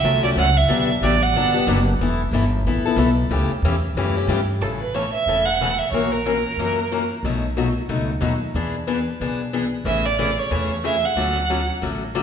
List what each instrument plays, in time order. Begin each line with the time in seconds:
Already playing: violin E5
0.03 upright bass C2, steel-string acoustic guitar D3 F#3 A3 C#4 F#4
0.23 steel-string acoustic guitar A3 C#4 F#4, violin D5
0.36 upright bass C#2, steel-string acoustic guitar D3 F#3 A3 C#4 F#4, violin F#5
0.57 violin E5
0.68 upright bass B1, steel-string acoustic guitar D3 F#3 B3 D4 G4
1.01 upright bass A1, steel-string acoustic guitar D3 F#3 B3 D4 G4, violin D5
1.23 violin F#5
1.33 upright bass G1, steel-string acoustic guitar D3 F#3 B3 D4 G4
1.54 steel-string acoustic guitar B3 D4 G4
1.67 upright bass F#1, steel-string acoustic guitar D3 F#3 B3 D4 G4
1.99 upright bass E1, steel-string acoustic guitar E3 B3 E4 A4
2.31 upright bass G1, steel-string acoustic guitar E3 B3 E4 A4
2.64 upright bass A1, steel-string acoustic guitar E3 B3 E4 A4
2.84 steel-string acoustic guitar B3 E4 A4, muted upright bass stroke
2.96 upright bass B1, steel-string acoustic guitar E3 B3 E4 A4
3.29 upright bass C#2, steel-string acoustic guitar C#3 E3 A3 C#4 G4
3.49 muted upright bass stroke
3.62 upright bass E2, steel-string acoustic guitar C#3 E3 A3 C#4 G4
3.94 upright bass F#2, steel-string acoustic guitar C#3 E3 A3 C#4 G4
4.16 steel-string acoustic guitar A3 C#4 G4
4.27 upright bass G2, steel-string acoustic guitar C#3 E3 A3 C#4 G4
4.61 upright bass A1, steel-string acoustic guitar C#3 E3 A3 C#4 A4, violin A4
4.81 violin B4
4.94 steel-string acoustic guitar C#3 E3 A3 C#4 A4, violin C#5
5.13 violin E5
5.26 upright bass E1, steel-string acoustic guitar C#3 E3 A3 C#4 A4
5.45 violin F#5
5.61 steel-string acoustic guitar C#3 E3 A3 C#4 A4
5.78 violin E5
5.91 upright bass A#1, steel-string acoustic guitar E3 A#3 C#4 F#4 A#4, violin C#5
6.12 violin A#4
6.26 steel-string acoustic guitar E3 A#3 C#4 F#4 A#4
6.57 upright bass F#2, steel-string acoustic guitar E3 A#3 C#4 F#4 A#4
6.91 steel-string acoustic guitar E3 A#3 C#4 F#4 A#4
7.23 upright bass B1, steel-string acoustic guitar B2 F#3 A3 D#4 F#4
7.57 steel-string acoustic guitar B2 F#3 A3 D#4 F#4
7.88 upright bass C#2, steel-string acoustic guitar B2 F#3 A3 D#4 F#4
8.21 upright bass D#2, steel-string acoustic guitar B2 F#3 A3 D#4 F#4
8.54 upright bass E2, steel-string acoustic guitar E3 B3 D4 G#4
8.87 steel-string acoustic guitar E3 B3 D4 G#4
9.20 upright bass B1, steel-string acoustic guitar E3 B3 D4 G#4
9.53 steel-string acoustic guitar E3 B3 D4 G#4
9.84 upright bass A1, steel-string acoustic guitar C#3 E3 A3 C#4 G#4, violin E5
10.06 violin D5
10.18 steel-string acoustic guitar C#3 E3 A3 C#4 G#4
10.39 violin C#5
10.50 upright bass E2, steel-string acoustic guitar C#3 E3 A3 C#4 G#4
10.83 steel-string acoustic guitar C#3 E3 A3 C#4 G#4, violin E5
11.05 violin F#5
11.16 upright bass D2, steel-string acoustic guitar D3 F#3 A3 C#4 F#4
11.50 steel-string acoustic guitar D3 F#3 A3 C#4 F#4
11.82 upright bass A1, steel-string acoustic guitar D3 F#3 A3 C#4 F#4
12.15 steel-string acoustic guitar D3 F#3 A3 C#4 F#4